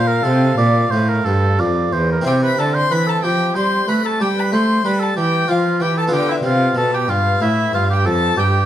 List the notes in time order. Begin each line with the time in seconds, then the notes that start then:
Already playing: A#2 F4 C5 F5
0.08 A#4
0.24 C3 A4
0.58 A#2 D5
0.91 A2 C5
1.09 A#4
1.25 G2 A4
1.59 F2 D5
1.93 E2 C5
2.12 A#4
2.21 C4 E4 C5
2.26 C3 G4 G5
2.43 B4 B5
2.59 D3 A4 A5
2.74 C5 C6
2.91 E3 B4 B5
3.07 A4 A5
3.23 F3 G4 G5
3.55 G3 C5 C6
3.87 A3 B4 B5
4.05 A4 A5
4.20 G3 G4 G5
4.37 B4 B5
4.52 A3 C5 C6
4.85 G3 B4 B5
5.00 A4 A5
5.16 E3 G4 G5
5.48 F3 F4 F5
5.80 E3 G4 G5
5.97 A4 A5
6.08 B3 F4
6.12 D3 G4 G5
6.29 E4 E5
6.43 C3 F4 F5
6.75 B2 A4 A5
6.94 G4 G5
7.08 G2 F4 F5
7.41 A2 E4 E5
7.73 G2 F4 F5
7.90 G4 G5
8.05 F2 A4 A5
8.37 G2 G4 G5